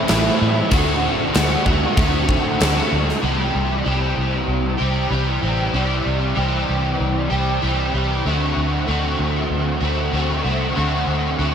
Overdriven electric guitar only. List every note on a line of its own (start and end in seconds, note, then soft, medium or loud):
0.00 0.40 A2 medium
0.08 0.69 E3 medium
0.08 0.70 A3 medium
0.08 0.73 C4 medium
0.08 0.71 E4 medium
0.71 1.32 D3 loud
0.71 1.34 A3 loud
0.71 1.34 C4 medium
0.71 1.36 F#4 loud
1.34 1.94 D3 medium
1.34 1.68 A3 medium
1.34 1.66 C4 medium
1.34 1.65 F#4 loud
1.66 1.96 A3 soft
1.66 1.97 C4 medium
1.66 1.97 F#4 medium
1.96 2.58 D3 medium
1.96 2.60 A3 medium
1.96 2.61 C4 medium
1.96 2.62 F#4 loud
2.59 3.21 D3 medium
2.59 3.21 A3 medium
2.59 3.22 C4 medium
2.59 3.22 F#4 medium
3.22 5.73 C3 medium
3.22 3.84 E3 medium
3.22 3.85 G3 medium
3.22 3.86 C4 loud
3.22 3.87 G4 loud
3.84 5.10 E3 medium
3.84 4.80 G3 medium
3.84 4.79 C4 medium
3.84 4.77 G4 medium
4.78 5.11 G3 medium
4.78 5.13 C4 medium
4.78 5.13 G4 medium
5.11 5.73 E3 medium
5.11 5.44 G3 medium
5.11 5.44 C4 medium
5.11 5.41 G4 medium
5.42 5.74 G3 medium
5.42 5.75 C4 medium
5.42 5.75 G4 medium
5.73 6.68 C3 medium
5.73 6.34 E3 medium
5.73 6.35 G3 loud
5.73 6.37 C4 loud
5.73 6.37 G4 loud
6.35 7.61 E3 medium
6.35 7.32 G3 medium
6.35 7.32 C4 medium
6.35 7.29 G4 medium
7.30 7.62 G3 medium
7.30 7.64 C4 medium
7.30 7.64 G4 medium
7.62 8.23 E3 medium
7.62 7.96 G3 medium
7.62 7.95 C4 medium
7.62 7.93 G4 medium
7.94 8.25 G3 medium
7.94 8.27 C4 medium
7.94 8.24 G4 medium
8.25 8.86 D3 loud
8.25 8.87 A3 loud
8.25 8.88 C4 medium
8.25 8.90 F#4 loud
8.87 10.11 D3 medium
8.87 9.83 A3 medium
8.87 9.81 C4 medium
8.87 9.79 F#4 loud
9.81 10.13 A3 medium
9.81 10.14 C4 medium
9.81 10.15 F#4 medium
10.13 10.74 D3 medium
10.13 10.47 A3 medium
10.13 10.45 C4 medium
10.13 10.43 F#4 medium
10.45 10.75 A3 medium
10.45 10.76 C4 medium
10.45 10.78 F#4 medium
10.75 11.37 D3 loud
10.75 11.39 A3 loud
10.75 11.39 C4 medium
10.75 11.41 F#4 loud
11.39 11.55 D3 medium
11.39 11.55 A3 medium
11.39 11.55 C4 medium
11.39 11.55 F#4 medium